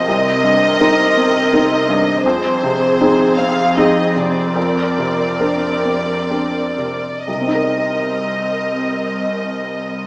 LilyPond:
<<
  \new Staff \with { instrumentName = "Violin section" } { \time 3/4 \key c \minor \tempo 4 = 74 ees''2. | c''4. f''8 ees''8 d''8~ | d''2. | ees''2. | }
  \new Staff \with { instrumentName = "Viola section" } { \time 3/4 \key c \minor << { bes'2. | aes'2. | bes'2~ bes'8. r16 | bes'2. | } \\ { c'2. | c'2.~ | c'2~ c'8. r16 | c'2. | } >> }
  \new Staff \with { instrumentName = "Felt piano" } { \time 3/4 \key c \minor c,8 g,8 <c' ees' bes'>8 c'8 <c' ees' bes'>8 g,8 | f,8 c8 <c' ees' aes'>8 c'8 <c' ees' aes'>8 c8 | f,8 c8 <c' d' bes'>8 c'8 <c' d' bes'>8 c8 | <c, c c' ees' bes' ees''>2. | }
  \new Staff \with { instrumentName = "Cello section" } { \clef bass \time 3/4 \key c \minor c2. | f,2.~ | f,2~ f,8. r16 | c,2. | }
>>